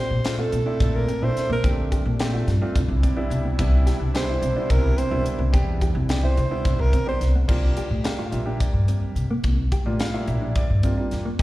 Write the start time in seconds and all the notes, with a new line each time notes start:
Already playing: A#2 A3 D4 G4 C5
0.11 A#2
0.24 A3 C4 D4 F4, snare, closed hi-hat
0.39 F4 A4
0.52 A#2, closed hi-hat
0.66 A3 C4 D4 E4, muted upright bass stroke
0.80 A#2, kick, closed hi-hat
0.96 A#4
1.08 C4, closed hi-hat
1.22 A#2 A3 C4 D4 E4 C5
1.36 muted upright bass stroke, snare, closed hi-hat
1.50 A#2 A#3 A#4
1.64 D3 A3 C4 D4 G4, kick, closed hi-hat
1.92 G4, kick, closed hi-hat
2.05 A#2
2.19 A3 C4 D4 G4, snare, closed hi-hat
2.34 F4
2.47 G2, snare, closed hi-hat
2.61 A3 C4 D4 F4
2.75 C2 B2 C3 G3 D4 E4, kick, closed hi-hat
2.88 C2
3.03 C4 D5, kick, closed hi-hat
3.16 G3 B3 D4 E4, muted upright bass stroke
3.30 C2 G5, closed hi-hat
3.45 B3
3.59 C2 G3 B3 D4 E4, kick, closed hi-hat
3.87 G4, snare, closed hi-hat
4.00 C2
4.14 G3 B3 D4 G4 C5, snare, closed hi-hat
4.29 E4
4.42 C2, closed hi-hat
4.56 G3 B3 D4 E4, muted upright bass stroke
4.70 C2 A#4, kick, closed hi-hat
4.98 C4 C5, closed hi-hat
5.11 C2 G3 B3 D4 E4
5.25 muted upright bass stroke, closed hi-hat
5.39 C2 B3
5.53 E2 G3 B3 D4 G4, kick, closed hi-hat
5.81 G4, kick, closed hi-hat
5.95 C2
6.09 G3 B3 D4 G4, snare, closed hi-hat
6.23 E4 C5
6.37 C3, closed hi-hat
6.51 G3 B3 D4 E4
6.65 C2, kick, closed hi-hat
6.79 C2 A#4
6.93 C4, kick, closed hi-hat
7.06 G3 B3 D4 G4 C5, muted upright bass stroke
7.21 C2, snare, closed hi-hat
7.35 B3
7.48 C2 G3 A#3 D4 F4, kick, crash
7.77 G4, closed hi-hat
7.90 A2
8.04 G3 A#3 D4 G4 F5, snare, closed hi-hat
8.19 F4
8.31 A#1 G3 A#3 D4 F4 E5, closed hi-hat
8.45 G3 A#3 D4 G4
8.60 D5, kick, closed hi-hat
8.73 G2
8.88 C4, closed hi-hat
9.15 C3, closed hi-hat
9.31 A#3
9.44 C2, kick, closed hi-hat
9.72 G4, kick, closed hi-hat
9.86 A2 G3 A#3 D4 F4
10.00 F5, snare, closed hi-hat
10.14 G3 A#3 D4 E4 F4
10.27 A#1 E5, closed hi-hat
10.41 D4
10.55 D5, kick, closed hi-hat
10.70 G2
10.83 G3 A#3 C4 D4 F4, kick, closed hi-hat
10.97 G3 A#3 D4 F4
11.11 E2, snare, closed hi-hat
11.26 A#3
11.39 F2 G3 A#3 C4 D#4